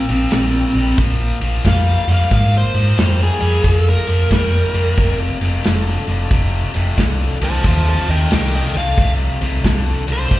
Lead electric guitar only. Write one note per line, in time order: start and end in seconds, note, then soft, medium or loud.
0.00 0.97 C4 loud
1.68 2.10 F5 medium
2.13 2.33 F5 medium
2.34 2.55 F5 medium
2.58 3.20 C5 medium
3.23 3.86 G#4 medium
3.89 5.17 A#4 medium
7.44 7.65 C5 medium
7.44 7.65 A5 medium
7.66 7.86 C5 medium
7.66 7.87 A5 medium
7.89 8.08 C5 medium
7.89 8.10 A5 medium
8.10 8.30 D#5 medium
8.10 8.31 G5 medium
8.34 8.53 D#5 medium
8.34 8.54 G5 loud
8.55 8.75 D#5 medium
8.55 8.76 G5 medium
8.77 9.12 F5 medium
10.12 10.40 C5 medium